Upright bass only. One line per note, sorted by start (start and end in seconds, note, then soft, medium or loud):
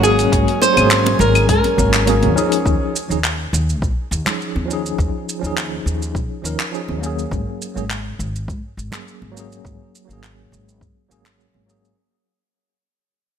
0.00 0.25 G#1 medium
0.32 0.42 G#1 loud
0.77 1.12 G#1 medium
1.20 1.50 G#1 loud
1.49 1.59 G#2 medium
1.78 2.24 G#1 loud
2.23 2.32 D#2 loud
2.66 2.75 D#2 medium
3.10 3.46 D#2 medium
3.53 3.82 D#2 loud
3.82 3.92 A#1 medium
4.11 4.21 D#2 loud
4.56 4.91 D#2 medium
4.99 5.08 D#2 loud
5.43 5.78 D#2 medium
5.86 6.16 D#2 medium
6.15 6.25 A#1 medium
6.44 6.54 D#2 medium
6.89 7.24 D#2 medium
7.31 7.41 G#1 medium
7.76 8.12 G#1 medium
8.19 8.50 G#1 medium
8.48 8.58 G#2 medium
8.77 8.87 G#1 medium
9.22 9.57 G#1 medium
9.65 9.74 G#1 medium
10.09 10.45 G#1 medium
10.52 10.83 G#1 medium
10.81 10.91 G#2 medium
11.10 11.46 G#1 medium
11.55 11.90 G#1 medium